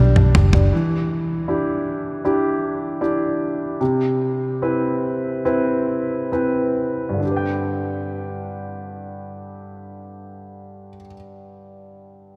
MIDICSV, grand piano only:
0, 0, Header, 1, 2, 480
1, 0, Start_track
1, 0, Key_signature, 1, "major"
1, 0, Tempo, 759494
1, 458, Time_signature, 4, 2, 24, 8
1, 1904, Tempo, 813008
1, 3344, Tempo, 887574
1, 4304, Tempo, 925926
1, 6967, End_track
2, 0, Start_track
2, 0, Title_t, "Grand piano"
2, 0, Program_c, 0, 0
2, 0, Control_c, 0, 64, 127
2, 0, Note_on_c, 0, 55, 53
2, 0, Note_on_c, 0, 62, 52
2, 100, Note_off_c, 0, 62, 0
2, 109, Note_on_c, 0, 62, 53
2, 210, Note_off_c, 0, 55, 0
2, 219, Note_on_c, 0, 55, 58
2, 334, Note_off_c, 0, 62, 0
2, 343, Note_on_c, 0, 62, 46
2, 450, Note_off_c, 0, 55, 0
2, 456, Note_off_c, 0, 62, 0
2, 460, Note_on_c, 0, 52, 55
2, 465, Control_c, 0, 64, 0
2, 592, Control_c, 0, 64, 127
2, 936, Note_on_c, 0, 62, 38
2, 936, Note_on_c, 0, 64, 37
2, 941, Note_on_c, 0, 67, 42
2, 1401, Note_off_c, 0, 62, 0
2, 1401, Note_off_c, 0, 64, 0
2, 1404, Note_off_c, 0, 67, 0
2, 1420, Note_on_c, 0, 62, 45
2, 1422, Note_on_c, 0, 64, 39
2, 1424, Note_on_c, 0, 67, 51
2, 1891, Note_off_c, 0, 62, 0
2, 1892, Note_off_c, 0, 64, 0
2, 1893, Note_off_c, 0, 67, 0
2, 1903, Note_on_c, 0, 62, 42
2, 1905, Note_on_c, 0, 64, 35
2, 1907, Note_on_c, 0, 67, 47
2, 2347, Note_off_c, 0, 52, 0
2, 2356, Note_off_c, 0, 62, 0
2, 2356, Note_off_c, 0, 64, 0
2, 2358, Note_off_c, 0, 67, 0
2, 2373, Note_on_c, 0, 48, 54
2, 2378, Control_c, 0, 64, 0
2, 2477, Control_c, 0, 64, 127
2, 2853, Note_on_c, 0, 60, 36
2, 2854, Note_on_c, 0, 64, 33
2, 2857, Note_on_c, 0, 71, 40
2, 3331, Note_off_c, 0, 60, 0
2, 3331, Note_off_c, 0, 64, 0
2, 3333, Note_off_c, 0, 71, 0
2, 3344, Note_on_c, 0, 64, 38
2, 3345, Note_on_c, 0, 60, 40
2, 3346, Note_on_c, 0, 71, 45
2, 3799, Note_off_c, 0, 64, 0
2, 3800, Note_off_c, 0, 60, 0
2, 3800, Note_off_c, 0, 71, 0
2, 3814, Note_on_c, 0, 60, 36
2, 3819, Note_on_c, 0, 64, 30
2, 3819, Note_on_c, 0, 71, 42
2, 4231, Note_on_c, 0, 43, 39
2, 4258, Note_on_c, 0, 50, 35
2, 4282, Note_off_c, 0, 48, 0
2, 4288, Note_off_c, 0, 60, 0
2, 4289, Note_on_c, 0, 62, 36
2, 4291, Note_off_c, 0, 64, 0
2, 4291, Note_off_c, 0, 71, 0
2, 4309, Control_c, 0, 64, 0
2, 4318, Note_on_c, 0, 67, 37
2, 4348, Note_on_c, 0, 71, 35
2, 4375, Note_on_c, 0, 79, 44
2, 4410, Control_c, 0, 64, 127
2, 6204, Note_off_c, 0, 43, 0
2, 6231, Note_off_c, 0, 50, 0
2, 6260, Note_off_c, 0, 62, 0
2, 6288, Note_off_c, 0, 67, 0
2, 6319, Note_off_c, 0, 71, 0
2, 6346, Note_off_c, 0, 79, 0
2, 6967, End_track
0, 0, End_of_file